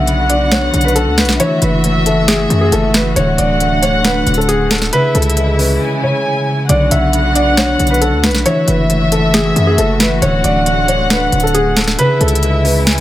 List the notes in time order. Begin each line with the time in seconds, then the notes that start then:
Already playing: B1 D3 B3 F#4 E5 F#5
0.07 B3, closed hi-hat
0.29 D4 D5, closed hi-hat
0.52 C#5, snare, closed hi-hat
0.73 B1 D3, closed hi-hat
0.81 B4, closed hi-hat
0.88 closed hi-hat
0.95 A4, closed hi-hat
1.07 D2
1.18 B4, snare, closed hi-hat, open hi-hat
1.23 B1, closed hi-hat
1.29 snare, closed hi-hat
1.40 E3 A3 C#5 E5, closed hi-hat
1.62 F#1 B4, closed hi-hat
1.84 A3, closed hi-hat
2.06 C#4 A4, closed hi-hat
2.28 G#4, snare, closed hi-hat
2.50 F#2 E3, closed hi-hat
2.61 G#4
2.72 F#1 A4, closed hi-hat
2.94 B4, snare, closed hi-hat
3.16 D1 D3 C#5 F#5, closed hi-hat
3.38 D1 D5, closed hi-hat
3.60 A3, closed hi-hat
3.82 D4 C#5, closed hi-hat
4.05 B4, snare, closed hi-hat
4.27 D1 D3, closed hi-hat
4.34 A4, closed hi-hat
4.41 closed hi-hat
4.48 G#4, closed hi-hat
4.71 A4, snare, closed hi-hat, open hi-hat
4.78 snare, closed hi-hat
4.85 closed hi-hat
4.93 C#3 E3 E4 B4 E5, closed hi-hat
5.15 C#2 A4, closed hi-hat
5.22 closed hi-hat
5.30 closed hi-hat
5.37 G#3, closed hi-hat
5.59 C#4 B4, open hi-hat
5.81 G#5
6.03 C#3 C#5
6.69 B1 D3 B3 F#4 D5 F#5, closed hi-hat
6.91 B1 E5, closed hi-hat
7.13 B3, closed hi-hat
7.35 D4 D5, closed hi-hat
7.57 C#5, snare, closed hi-hat
7.79 B1 D3, closed hi-hat
7.87 B4, closed hi-hat
7.94 closed hi-hat
8.01 A4, closed hi-hat
8.13 D2
8.23 B4, snare, closed hi-hat, open hi-hat
8.29 B1, closed hi-hat
8.35 snare, closed hi-hat
8.45 E3 A3 F#4 C#5 E5, closed hi-hat
8.68 F#1 B4, closed hi-hat
8.90 A3, closed hi-hat
9.12 C#4 A4, closed hi-hat
9.34 G#4, snare, closed hi-hat
9.56 F#2 E3, closed hi-hat
9.67 G#4
9.78 F#1 A4, closed hi-hat
10.00 B4, snare, closed hi-hat
10.22 D1 D3 C#5 F#5, closed hi-hat
10.44 D1 D5, closed hi-hat
10.66 A3, closed hi-hat
10.88 D4 C#5, closed hi-hat
11.10 B4, snare, closed hi-hat
11.32 D1 D3, closed hi-hat
11.40 A4, closed hi-hat
11.47 closed hi-hat
11.54 G#4, closed hi-hat
11.76 A4, snare, closed hi-hat, open hi-hat
11.84 snare, closed hi-hat
11.91 closed hi-hat
11.99 C#3 E3 E4 B4 E5, closed hi-hat
12.21 C#2 A4, closed hi-hat
12.28 closed hi-hat
12.35 closed hi-hat
12.43 G#3, closed hi-hat
12.65 C#4 B4, open hi-hat
12.87 G#5, snare, closed hi-hat
12.92 closed hi-hat